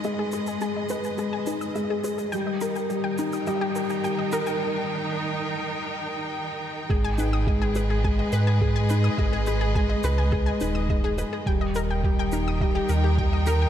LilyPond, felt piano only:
\new Staff \with { instrumentName = "Felt piano" } { \time 4/4 \key gis \minor \tempo 4 = 105 gis8 gis'8 gis8 b'8 gis8 dis'8 gis8 gis'8 | g8 ais'8 g8 dis'8 g8 g'8 g8 ais'8 | r1 | gis8 dis'8 gis8 gis'8 gis8 b'8 gis8 dis'8 |
gis8 gis'8 gis8 b'8 gis8 dis'8 gis8 gis'8 | g8 ais'8 g8 dis'8 g8 g'8 g8 ais'8 | }